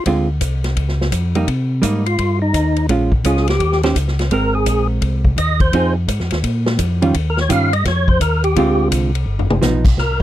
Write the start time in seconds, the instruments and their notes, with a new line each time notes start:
0.06 tonewheel organ D2, hollow-body jazz guitar D3 G#3 C4 F4, kick, ride
0.41 tonewheel organ C2, kick, hi-hat pedal, ride
0.64 snare, ride
0.76 tonewheel organ C#2, kick, ride
0.89 snare
1.01 snare
1.11 tonewheel organ F2, kick, hi-hat pedal, ride
1.35 hollow-body jazz guitar G3 A#3 D#4, ride
1.47 tonewheel organ C3, kick, ride
1.82 tonewheel organ G#2, hollow-body jazz guitar G3 A#3 D#4, kick, hi-hat pedal, ride
2.06 tonewheel organ F4, ride
2.18 tonewheel organ G2, kick, ride
2.42 tonewheel organ D#4
2.54 tonewheel organ D#2, kick, hi-hat pedal, ride
2.76 ride
2.89 tonewheel organ A#1, hollow-body jazz guitar G#3 C#4 F4, kick, ride
3.12 kick
3.24 tonewheel organ C#2 G#4, hollow-body jazz guitar G#3 C#4 F4, kick, hi-hat pedal, ride
3.37 snare
3.48 tonewheel organ G4, snare, ride
3.60 tonewheel organ D#2, kick, ride
3.72 snare
3.83 hollow-body jazz guitar D#3 C#4 G4 C5, snare, ride
3.95 tonewheel organ C#2, kick, hi-hat pedal, ride
4.08 snare
4.19 snare, ride
4.31 tonewheel organ G#1 A#4, hollow-body jazz guitar G#3 C4 A#4, kick, ride
4.55 tonewheel organ G#4
4.66 tonewheel organ A#1, kick, hi-hat pedal, ride
5.01 tonewheel organ C2, kick, ride
5.25 kick
5.37 tonewheel organ D#2 D#5, kick, hi-hat pedal, ride
5.60 tonewheel organ C5, kick, ride
5.72 tonewheel organ F2, hollow-body jazz guitar F3 C4 D#4 G#4, kick, ride
6.08 tonewheel organ G#2, kick, hi-hat pedal, ride
6.20 tonewheel organ F2, snare
6.31 tonewheel organ D#2, snare, ride
6.44 tonewheel organ A#2, kick, ride
6.66 snare
6.79 tonewheel organ F2, kick, hi-hat pedal, ride
7.02 hollow-body jazz guitar D#3 G3 C#4 F4, ride
7.14 tonewheel organ D#2, kick, ride
7.30 tonewheel organ A#4
7.37 tonewheel organ C#5, snare
7.49 tonewheel organ G2 F5, hollow-body jazz guitar D#3 G3 C#4 F4, kick, hi-hat pedal, ride
7.73 tonewheel organ D#5, ride
7.85 tonewheel organ F2 C#5, kick, snare, ride
8.08 tonewheel organ C5, kick
8.21 tonewheel organ D#2 A#4, kick, hi-hat pedal, ride
8.44 tonewheel organ G4, ride
8.56 tonewheel organ D2, hollow-body jazz guitar D3 G#3 C4 F4, kick, ride
8.91 tonewheel organ C2, kick, hi-hat pedal, ride
9.15 ride
9.26 tonewheel organ G1
9.39 floor tom
9.50 mid tom
9.62 tonewheel organ B1, hollow-body jazz guitar F3 B3 D#4, snare, hi-hat pedal
9.85 kick, crash
9.97 tonewheel organ C2 A#4, kick, snare